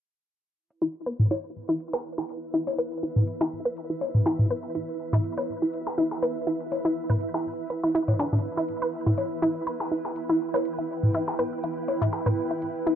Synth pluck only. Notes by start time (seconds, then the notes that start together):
0.82 E4
1.06 B4
1.31 E4
1.69 E4
1.93 B4
2.18 E4
2.54 E4
2.78 B4
3.03 E4
3.41 E4
3.65 B4
3.90 E4
4.26 E4
4.50 B4
4.75 E4
5.13 E4
5.38 B4
5.62 E4
5.98 E4
6.22 B4
6.47 E4
6.85 E4
7.10 B4
7.34 E4
7.70 B4
7.83 E4
7.95 E4
8.19 D4
8.33 D4
8.57 E4
8.82 B4
9.06 E4
9.42 E4
9.67 B4
9.91 E4
10.29 E4
10.54 B4
10.78 E4
11.14 E4
11.39 B4
11.64 E4
12.02 E4
12.26 B4
12.51 E4
12.87 E4